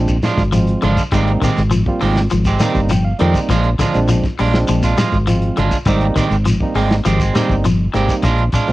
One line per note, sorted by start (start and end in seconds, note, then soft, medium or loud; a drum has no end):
0.00 0.18 A#1 medium
0.00 0.16 F3 medium
0.00 0.16 G#3 medium
0.00 0.16 C4 medium
0.00 0.16 D4 medium
0.08 kick medium
0.08 closed hi-hat soft
0.08 shekere medium
0.22 0.41 F3 medium
0.22 0.41 G#3 medium
0.22 0.42 D4 medium
0.22 0.42 F4 medium
0.22 snare medium
0.22 closed hi-hat soft
0.22 shekere medium
0.37 0.74 G#1 medium
0.37 kick medium
0.37 snare soft
0.37 shekere soft
0.52 0.72 F3 medium
0.52 0.83 F3 medium
0.52 0.83 G#3 medium
0.52 0.83 C4 medium
0.52 0.83 F4 medium
0.52 closed hi-hat medium
0.52 shekere medium
0.67 closed hi-hat soft
0.82 0.95 G#1 medium
0.82 1.02 D3 medium
0.82 1.01 F3 medium
0.82 1.01 G#3 medium
0.82 1.01 D4 medium
0.82 1.02 F4 medium
0.82 closed hi-hat medium
0.82 shekere soft
0.97 kick medium
0.97 closed hi-hat soft
0.97 shekere medium
1.11 1.36 G#1 loud
1.11 1.31 D#3 medium
1.11 1.32 G3 medium
1.11 1.50 G3 medium
1.11 1.31 G#3 medium
1.11 1.50 A#3 medium
1.11 1.31 C4 medium
1.11 1.50 C4 medium
1.11 1.50 D#4 medium
1.11 1.31 G4 medium
1.11 kick medium
1.11 closed hi-hat medium
1.11 shekere medium
1.27 closed hi-hat soft
1.41 1.61 D#3 medium
1.41 1.60 D#3 medium
1.41 1.61 G#3 medium
1.41 1.61 C4 medium
1.41 1.61 G4 medium
1.41 kick medium
1.41 closed hi-hat medium
1.41 shekere medium
1.56 1.82 G#1 medium
1.56 snare soft
1.56 closed hi-hat soft
1.56 shekere soft
1.71 1.91 F3 medium
1.71 closed hi-hat medium
1.71 shekere medium
1.86 2.24 G3 medium
1.86 2.24 A#3 medium
1.86 2.24 C4 medium
1.86 2.25 F4 medium
1.86 kick medium
2.01 2.26 G#1 medium
2.01 2.19 D#3 medium
2.01 2.19 G#3 medium
2.01 2.20 C4 medium
2.01 2.20 G4 medium
2.01 muted clean electric guitar stroke medium
2.01 open hi-hat medium
2.01 shekere soft
2.16 snare medium
2.16 closed hi-hat soft
2.30 2.56 G#1 medium
2.30 2.51 F3 medium
2.30 closed hi-hat medium
2.30 shekere medium
2.44 2.62 G#3 soft
2.44 2.61 C4 soft
2.44 2.61 G4 medium
2.44 kick medium
2.44 closed hi-hat soft
2.44 shekere medium
2.59 2.79 D#3 medium
2.59 2.90 G3 medium
2.59 2.80 G3 medium
2.59 2.90 A#3 medium
2.59 2.90 C4 medium
2.59 2.79 C4 medium
2.59 2.90 D#4 medium
2.59 2.80 G4 medium
2.59 snare medium
2.59 closed hi-hat soft
2.59 shekere medium
2.75 3.12 G1 medium
2.75 kick medium
2.75 shekere soft
2.89 3.10 F3 medium
2.89 3.04 G5 medium
2.89 closed hi-hat medium
2.89 shekere medium
3.05 3.19 F5 medium
3.18 3.33 F2 medium
3.18 3.38 D#3 medium
3.18 3.40 D#3 medium
3.18 3.49 G3 medium
3.18 3.38 G#3 medium
3.18 3.49 A#3 medium
3.18 3.49 C4 medium
3.18 3.39 C4 medium
3.18 3.50 D#4 medium
3.18 3.39 G4 medium
3.18 3.47 D5 medium
3.18 closed hi-hat soft
3.18 shekere soft
3.34 kick medium
3.34 closed hi-hat soft
3.34 shekere medium
3.49 3.74 A#1 medium
3.49 3.69 F3 medium
3.49 3.68 F3 medium
3.49 3.68 G#3 medium
3.49 3.68 D4 medium
3.49 3.68 F4 medium
3.49 kick medium
3.49 closed hi-hat medium
3.49 shekere medium
3.63 closed hi-hat soft
3.79 3.99 D3 medium
3.79 3.98 F3 medium
3.79 3.98 G#3 medium
3.79 3.98 D4 medium
3.79 3.98 F4 medium
3.79 kick medium
3.79 snare soft
3.79 closed hi-hat soft
3.79 shekere medium
3.94 4.19 A#1 medium
3.94 4.24 F3 medium
3.94 4.24 G#3 medium
3.94 4.24 C4 medium
3.94 4.24 D4 medium
3.94 closed hi-hat soft
3.94 shekere soft
4.08 4.29 F3 medium
4.08 closed hi-hat medium
4.08 shekere medium
4.23 kick medium
4.23 snare soft
4.38 4.64 A#1 medium
4.38 4.59 G3 medium
4.38 4.57 G#3 medium
4.38 4.58 D4 medium
4.38 4.58 F4 medium
4.38 muted clean electric guitar stroke medium
4.38 open hi-hat medium
4.38 shekere soft
4.53 4.91 F3 medium
4.53 4.91 G#3 medium
4.53 4.91 C4 medium
4.53 4.91 D4 medium
4.53 snare medium
4.53 closed hi-hat soft
4.68 4.93 A#1 medium
4.68 4.88 F3 medium
4.68 closed hi-hat medium
4.68 shekere medium
4.82 4.97 G#3 soft
4.82 4.99 D4 soft
4.82 4.99 F4 soft
4.82 kick medium
4.82 closed hi-hat soft
4.82 shekere medium
4.97 5.16 F3 medium
4.97 5.18 G3 medium
4.97 5.16 G#3 medium
4.97 5.17 F4 medium
4.97 snare medium
4.97 closed hi-hat soft
4.97 shekere medium
5.12 5.49 G#1 medium
5.12 kick medium
5.12 shekere soft
5.27 5.47 F3 medium
5.27 5.57 F3 medium
5.27 5.57 G#3 medium
5.27 5.58 C4 medium
5.27 5.58 F4 medium
5.27 closed hi-hat medium
5.27 shekere medium
5.42 closed hi-hat soft
5.57 5.70 G#1 medium
5.57 5.77 D3 medium
5.57 5.76 G#3 medium
5.57 5.76 D4 medium
5.57 5.77 F4 medium
5.57 muted clean electric guitar stroke medium
5.57 closed hi-hat medium
5.57 shekere soft
5.71 kick medium
5.71 closed hi-hat soft
5.71 shekere medium
5.85 6.11 G#1 medium
5.85 6.06 D#3 medium
5.85 6.07 G3 medium
5.85 6.24 G3 medium
5.85 6.24 A#3 medium
5.85 6.25 C4 medium
5.85 6.06 C4 medium
5.85 6.25 D#4 loud
5.85 6.06 G4 medium
5.85 muted clean electric guitar stroke medium
5.85 kick medium
5.85 closed hi-hat medium
5.85 shekere medium
6.01 closed hi-hat soft
6.16 6.36 D#3 medium
6.16 6.35 D#3 medium
6.16 6.35 G#3 medium
6.16 6.35 C4 medium
6.16 6.35 G4 medium
6.16 muted fingered electric bass stroke soft
6.16 kick medium
6.16 closed hi-hat medium
6.16 shekere medium
6.31 6.56 G#1 medium
6.31 closed hi-hat soft
6.31 shekere soft
6.45 6.66 F3 medium
6.45 closed hi-hat medium
6.45 shekere medium
6.61 6.99 G3 medium
6.61 6.99 A#3 medium
6.61 6.99 C4 medium
6.61 6.99 D#4 medium
6.61 kick medium
6.75 7.00 G#1 medium
6.75 6.94 D#3 medium
6.75 6.96 G#3 medium
6.75 6.94 G#3 medium
6.75 6.95 C4 medium
6.75 6.95 G4 medium
6.75 open hi-hat medium
6.75 shekere soft
6.91 snare medium
6.91 closed hi-hat soft
7.05 7.30 G#1 medium
7.05 7.21 D#3 medium
7.05 7.25 F3 medium
7.05 7.21 G#3 medium
7.05 7.20 C4 medium
7.05 7.22 G4 medium
7.05 snare soft
7.05 closed hi-hat medium
7.05 shekere medium
7.20 7.34 G#3 soft
7.20 7.35 C4 soft
7.20 kick medium
7.20 closed hi-hat soft
7.20 shekere medium
7.34 7.54 D#3 medium
7.34 7.64 G3 medium
7.34 7.55 G3 medium
7.34 7.54 G#3 medium
7.34 7.65 A#3 medium
7.34 7.65 C4 medium
7.34 7.54 C4 medium
7.34 7.65 D#4 medium
7.34 7.54 G4 medium
7.34 snare medium
7.34 closed hi-hat medium
7.34 shekere medium
7.49 7.87 G1 medium
7.49 kick medium
7.49 shekere soft
7.64 7.85 F3 medium
7.64 closed hi-hat medium
7.64 shekere medium
7.94 8.07 G#1 medium
7.94 8.14 D#3 medium
7.94 8.24 G3 medium
7.94 8.13 G#3 medium
7.94 8.24 A#3 medium
7.94 8.25 C4 medium
7.94 8.14 C4 medium
7.94 8.25 D#4 medium
7.94 8.14 G4 medium
7.94 snare soft
7.94 closed hi-hat soft
7.94 shekere soft
8.09 kick medium
8.09 closed hi-hat soft
8.09 shekere medium
8.23 8.48 A#1 medium
8.23 8.43 G#3 medium
8.23 8.43 D4 medium
8.23 8.43 F4 medium
8.23 muted clean electric guitar stroke medium
8.23 kick medium
8.23 closed hi-hat medium
8.23 shekere medium
8.38 closed hi-hat soft
8.52 8.72 G#3 medium
8.52 8.72 D4 medium
8.52 8.72 F4 medium
8.52 muted clean electric guitar stroke medium
8.52 kick medium
8.52 closed hi-hat soft
8.52 shekere medium
8.67 8.72 A#1 medium
8.67 8.72 F3 medium
8.67 8.72 G#3 medium
8.67 8.72 C4 medium
8.67 8.72 D4 medium
8.67 closed hi-hat soft